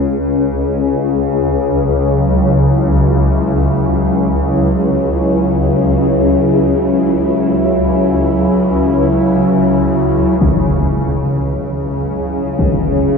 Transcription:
0, 0, Header, 1, 4, 480
1, 0, Start_track
1, 0, Key_signature, 4, "minor"
1, 0, Tempo, 500000
1, 12651, End_track
2, 0, Start_track
2, 0, Title_t, "Analog synth pad"
2, 0, Program_c, 0, 89
2, 1616, Note_on_c, 0, 54, 78
2, 2073, Note_on_c, 0, 64, 79
2, 3537, Note_on_c, 0, 61, 57
2, 12651, Note_off_c, 0, 54, 0
2, 12651, Note_off_c, 0, 61, 0
2, 12651, Note_off_c, 0, 64, 0
2, 12651, End_track
3, 0, Start_track
3, 0, Title_t, "Synth drone"
3, 0, Program_c, 1, 95
3, 0, Note_on_c, 1, 37, 71
3, 0, Note_on_c, 1, 49, 71
3, 9980, Note_off_c, 1, 49, 0
3, 9983, Note_off_c, 1, 37, 0
3, 9991, Note_on_c, 1, 49, 72
3, 9995, Note_on_c, 1, 37, 72
3, 12651, Note_off_c, 1, 37, 0
3, 12651, Note_off_c, 1, 49, 0
3, 12651, End_track
4, 0, Start_track
4, 0, Title_t, "Impact"
4, 0, Program_c, 2, 103
4, 9997, Note_on_c, 2, 60, 66
4, 10203, Note_off_c, 2, 60, 0
4, 12086, Note_on_c, 2, 60, 53
4, 12294, Note_off_c, 2, 60, 0
4, 12651, End_track
0, 0, End_of_file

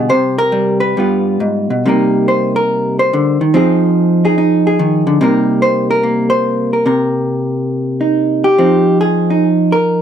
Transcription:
0, 0, Header, 1, 2, 480
1, 0, Start_track
1, 0, Key_signature, -3, "minor"
1, 0, Tempo, 433213
1, 111, Time_signature, 4, 2, 24, 8
1, 2993, Tempo, 415512
1, 7793, Tempo, 427960
1, 11340, End_track
2, 0, Start_track
2, 0, Title_t, "Hollow-body jazz guitar"
2, 0, Program_c, 0, 26
2, 0, Note_on_c, 0, 47, 61
2, 0, Note_on_c, 0, 55, 64
2, 105, Note_on_c, 0, 48, 69
2, 108, Note_on_c, 0, 72, 79
2, 113, Note_off_c, 0, 47, 0
2, 422, Note_off_c, 0, 72, 0
2, 426, Note_on_c, 0, 70, 86
2, 574, Note_off_c, 0, 55, 0
2, 578, Note_on_c, 0, 55, 56
2, 886, Note_off_c, 0, 70, 0
2, 890, Note_on_c, 0, 71, 67
2, 1037, Note_off_c, 0, 55, 0
2, 1055, Note_off_c, 0, 48, 0
2, 1075, Note_on_c, 0, 43, 63
2, 1079, Note_on_c, 0, 55, 38
2, 1088, Note_on_c, 0, 59, 37
2, 1104, Note_on_c, 0, 65, 42
2, 1549, Note_off_c, 0, 43, 0
2, 1553, Note_on_c, 0, 44, 52
2, 1883, Note_off_c, 0, 44, 0
2, 1887, Note_on_c, 0, 47, 51
2, 2036, Note_off_c, 0, 55, 0
2, 2037, Note_off_c, 0, 71, 0
2, 2038, Note_off_c, 0, 59, 0
2, 2044, Note_off_c, 0, 47, 0
2, 2048, Note_off_c, 0, 65, 0
2, 2056, Note_on_c, 0, 48, 65
2, 2063, Note_on_c, 0, 55, 43
2, 2076, Note_on_c, 0, 58, 42
2, 2084, Note_on_c, 0, 63, 38
2, 2094, Note_on_c, 0, 70, 44
2, 2523, Note_off_c, 0, 70, 0
2, 2527, Note_on_c, 0, 72, 68
2, 2832, Note_off_c, 0, 72, 0
2, 2836, Note_on_c, 0, 70, 75
2, 3316, Note_off_c, 0, 70, 0
2, 3330, Note_on_c, 0, 72, 75
2, 3484, Note_off_c, 0, 48, 0
2, 3492, Note_on_c, 0, 50, 59
2, 3807, Note_off_c, 0, 50, 0
2, 3811, Note_on_c, 0, 51, 52
2, 3812, Note_off_c, 0, 72, 0
2, 3955, Note_off_c, 0, 55, 0
2, 3960, Note_on_c, 0, 53, 70
2, 3964, Note_off_c, 0, 58, 0
2, 3966, Note_off_c, 0, 51, 0
2, 3969, Note_on_c, 0, 60, 53
2, 3973, Note_off_c, 0, 63, 0
2, 3978, Note_on_c, 0, 63, 57
2, 3990, Note_on_c, 0, 68, 54
2, 4771, Note_off_c, 0, 68, 0
2, 4774, Note_off_c, 0, 63, 0
2, 4779, Note_on_c, 0, 63, 52
2, 4785, Note_on_c, 0, 68, 60
2, 4927, Note_off_c, 0, 63, 0
2, 4931, Note_on_c, 0, 63, 56
2, 5252, Note_off_c, 0, 68, 0
2, 5266, Note_on_c, 0, 68, 62
2, 5409, Note_on_c, 0, 51, 62
2, 5722, Note_off_c, 0, 51, 0
2, 5727, Note_on_c, 0, 50, 60
2, 5867, Note_off_c, 0, 68, 0
2, 5877, Note_off_c, 0, 53, 0
2, 5879, Note_off_c, 0, 50, 0
2, 5889, Note_on_c, 0, 48, 72
2, 5893, Note_on_c, 0, 55, 42
2, 5903, Note_off_c, 0, 60, 0
2, 5907, Note_off_c, 0, 63, 0
2, 5907, Note_on_c, 0, 58, 51
2, 5911, Note_on_c, 0, 63, 45
2, 5921, Note_on_c, 0, 70, 51
2, 6361, Note_off_c, 0, 70, 0
2, 6366, Note_on_c, 0, 72, 76
2, 6680, Note_off_c, 0, 72, 0
2, 6695, Note_on_c, 0, 70, 81
2, 6838, Note_off_c, 0, 58, 0
2, 6843, Note_on_c, 0, 58, 49
2, 7143, Note_off_c, 0, 70, 0
2, 7148, Note_on_c, 0, 72, 80
2, 7631, Note_off_c, 0, 72, 0
2, 7649, Note_on_c, 0, 70, 43
2, 7779, Note_off_c, 0, 48, 0
2, 7779, Note_off_c, 0, 55, 0
2, 7780, Note_off_c, 0, 70, 0
2, 7793, Note_on_c, 0, 48, 67
2, 7804, Note_on_c, 0, 70, 46
2, 9078, Note_off_c, 0, 63, 0
2, 9083, Note_on_c, 0, 63, 38
2, 9567, Note_off_c, 0, 70, 0
2, 9572, Note_on_c, 0, 67, 68
2, 9720, Note_off_c, 0, 48, 0
2, 9726, Note_off_c, 0, 58, 0
2, 9731, Note_on_c, 0, 53, 61
2, 9738, Note_on_c, 0, 60, 39
2, 9745, Note_off_c, 0, 63, 0
2, 9749, Note_on_c, 0, 63, 45
2, 10201, Note_off_c, 0, 67, 0
2, 10206, Note_on_c, 0, 68, 69
2, 10534, Note_off_c, 0, 63, 0
2, 10538, Note_on_c, 0, 63, 41
2, 10683, Note_off_c, 0, 68, 0
2, 11009, Note_on_c, 0, 70, 80
2, 11340, Note_off_c, 0, 53, 0
2, 11340, Note_off_c, 0, 60, 0
2, 11340, Note_off_c, 0, 63, 0
2, 11340, Note_off_c, 0, 70, 0
2, 11340, End_track
0, 0, End_of_file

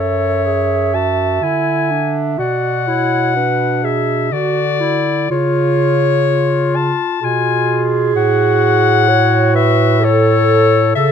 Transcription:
0, 0, Header, 1, 5, 480
1, 0, Start_track
1, 0, Key_signature, 3, "minor"
1, 0, Tempo, 970874
1, 1184, Time_signature, 3, 2, 24, 8
1, 3102, Tempo, 937500
1, 5582, End_track
2, 0, Start_track
2, 0, Title_t, "Clarinet"
2, 0, Program_c, 0, 71
2, 0, Note_on_c, 0, 73, 94
2, 471, Note_on_c, 0, 81, 80
2, 478, Note_off_c, 0, 73, 0
2, 711, Note_on_c, 0, 80, 86
2, 719, Note_off_c, 0, 81, 0
2, 1102, Note_off_c, 0, 80, 0
2, 1186, Note_on_c, 0, 78, 96
2, 1902, Note_on_c, 0, 76, 79
2, 1910, Note_off_c, 0, 78, 0
2, 2139, Note_on_c, 0, 74, 92
2, 2147, Note_off_c, 0, 76, 0
2, 2624, Note_off_c, 0, 74, 0
2, 2628, Note_on_c, 0, 73, 106
2, 3351, Note_on_c, 0, 81, 90
2, 3358, Note_off_c, 0, 73, 0
2, 3601, Note_on_c, 0, 80, 91
2, 3609, Note_off_c, 0, 81, 0
2, 3937, Note_off_c, 0, 80, 0
2, 4073, Note_on_c, 0, 78, 118
2, 4767, Note_off_c, 0, 78, 0
2, 4784, Note_on_c, 0, 76, 99
2, 5034, Note_on_c, 0, 73, 115
2, 5042, Note_off_c, 0, 76, 0
2, 5495, Note_off_c, 0, 73, 0
2, 5498, Note_on_c, 0, 76, 125
2, 5582, Note_off_c, 0, 76, 0
2, 5582, End_track
3, 0, Start_track
3, 0, Title_t, "Clarinet"
3, 0, Program_c, 1, 71
3, 0, Note_on_c, 1, 76, 76
3, 1185, Note_on_c, 1, 74, 57
3, 1193, Note_off_c, 1, 76, 0
3, 1421, Note_on_c, 1, 73, 65
3, 1428, Note_off_c, 1, 74, 0
3, 1657, Note_off_c, 1, 73, 0
3, 1661, Note_on_c, 1, 71, 64
3, 1892, Note_off_c, 1, 71, 0
3, 1895, Note_on_c, 1, 68, 69
3, 2132, Note_on_c, 1, 66, 62
3, 2139, Note_off_c, 1, 68, 0
3, 2534, Note_off_c, 1, 66, 0
3, 2618, Note_on_c, 1, 65, 80
3, 3431, Note_off_c, 1, 65, 0
3, 3583, Note_on_c, 1, 68, 90
3, 4546, Note_on_c, 1, 73, 94
3, 4553, Note_off_c, 1, 68, 0
3, 4778, Note_on_c, 1, 71, 92
3, 4785, Note_off_c, 1, 73, 0
3, 5011, Note_on_c, 1, 69, 90
3, 5018, Note_off_c, 1, 71, 0
3, 5493, Note_off_c, 1, 69, 0
3, 5500, Note_on_c, 1, 69, 82
3, 5582, Note_off_c, 1, 69, 0
3, 5582, End_track
4, 0, Start_track
4, 0, Title_t, "Clarinet"
4, 0, Program_c, 2, 71
4, 0, Note_on_c, 2, 69, 56
4, 227, Note_on_c, 2, 68, 57
4, 235, Note_off_c, 2, 69, 0
4, 462, Note_on_c, 2, 66, 64
4, 469, Note_off_c, 2, 68, 0
4, 706, Note_on_c, 2, 64, 64
4, 714, Note_off_c, 2, 66, 0
4, 943, Note_on_c, 2, 62, 65
4, 950, Note_off_c, 2, 64, 0
4, 1178, Note_on_c, 2, 66, 70
4, 1186, Note_off_c, 2, 62, 0
4, 1422, Note_on_c, 2, 64, 60
4, 1430, Note_off_c, 2, 66, 0
4, 1656, Note_off_c, 2, 64, 0
4, 1659, Note_on_c, 2, 62, 58
4, 2129, Note_off_c, 2, 62, 0
4, 2134, Note_on_c, 2, 66, 67
4, 2374, Note_on_c, 2, 64, 73
4, 2381, Note_off_c, 2, 66, 0
4, 2618, Note_off_c, 2, 64, 0
4, 2621, Note_on_c, 2, 65, 72
4, 2959, Note_off_c, 2, 65, 0
4, 3104, Note_on_c, 2, 65, 65
4, 3570, Note_off_c, 2, 65, 0
4, 3585, Note_on_c, 2, 65, 68
4, 4063, Note_on_c, 2, 66, 82
4, 4071, Note_off_c, 2, 65, 0
4, 4537, Note_off_c, 2, 66, 0
4, 4540, Note_on_c, 2, 66, 77
4, 5025, Note_on_c, 2, 69, 86
4, 5033, Note_off_c, 2, 66, 0
4, 5495, Note_off_c, 2, 69, 0
4, 5498, Note_on_c, 2, 69, 92
4, 5582, Note_off_c, 2, 69, 0
4, 5582, End_track
5, 0, Start_track
5, 0, Title_t, "Bass clarinet"
5, 0, Program_c, 3, 71
5, 0, Note_on_c, 3, 42, 65
5, 681, Note_off_c, 3, 42, 0
5, 697, Note_on_c, 3, 50, 62
5, 1170, Note_off_c, 3, 50, 0
5, 1181, Note_on_c, 3, 47, 68
5, 2137, Note_on_c, 3, 50, 63
5, 2144, Note_off_c, 3, 47, 0
5, 2619, Note_off_c, 3, 50, 0
5, 2622, Note_on_c, 3, 49, 76
5, 3434, Note_off_c, 3, 49, 0
5, 3588, Note_on_c, 3, 47, 72
5, 4062, Note_on_c, 3, 45, 83
5, 4070, Note_off_c, 3, 47, 0
5, 5497, Note_off_c, 3, 45, 0
5, 5501, Note_on_c, 3, 49, 92
5, 5582, Note_off_c, 3, 49, 0
5, 5582, End_track
0, 0, End_of_file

